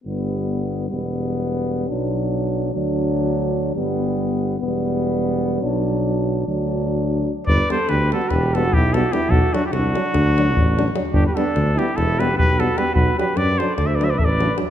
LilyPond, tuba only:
\new Staff \with { instrumentName = "Tuba" } { \clef bass \time 9/8 \key g \major \tempo 4. = 98 g,,2 e,,2~ e,,8 | b,,2 d,2~ d,8 | g,,2 e,,2~ e,,8 | b,,2 d,2~ d,8 |
g,,8 r8 d,4 e,,4 b,,4. | b,,8 r8 c,4 d,4 a,,4. | g,,8 r8 d,4 e,,4 b,,4. | b,,8 r8 fis,4 d,4 a,,4. | }